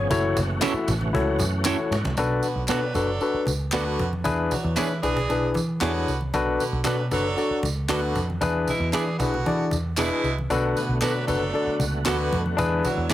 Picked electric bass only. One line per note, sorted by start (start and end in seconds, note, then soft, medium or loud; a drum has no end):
0.10 0.33 F#1 loud
0.36 0.59 F#1 medium
0.74 muted picked electric bass stroke medium
0.88 1.11 A1 medium
1.14 1.37 C#2 medium
1.39 1.74 F#2 loud
1.91 2.03 G#2 medium
2.04 2.16 C2 medium
2.17 2.40 B1 loud
2.56 2.68 B1 medium
2.69 2.92 B2 medium
2.95 3.18 F#1 medium
3.34 muted picked electric bass stroke soft
3.46 3.70 C#2 medium
3.73 3.96 D2 loud
3.99 4.22 F2 medium
4.25 4.48 E2 medium
4.64 4.76 E2 medium
4.77 5.00 E3 medium
5.03 5.26 B1 medium
5.30 5.52 B1 medium
5.55 5.78 E3 medium
5.81 6.04 E2 loud
6.07 6.30 C2 medium
6.33 6.56 B1 medium
6.73 6.84 B1 medium
6.85 7.08 B2 medium
7.11 7.34 F#1 medium
7.50 muted picked electric bass stroke soft
7.63 7.86 C#2 medium
7.89 8.12 D2 medium
8.15 8.39 F2 medium
8.41 8.64 E2 medium
8.80 8.92 E2 medium
8.93 9.16 E3 medium
9.20 9.43 B1 medium
9.46 9.69 E3 medium
9.71 9.94 E2 medium
9.98 10.09 E1 medium
10.24 10.47 C2 medium
10.50 10.73 B1 medium
10.89 11.01 B1 medium
11.02 11.29 B2 medium
11.28 11.51 F#1 medium
11.67 muted picked electric bass stroke soft
11.79 12.03 C#2 medium
12.06 12.29 D2 medium
12.32 12.55 F2 medium
12.59 12.81 E2 loud
12.98 13.09 E2 medium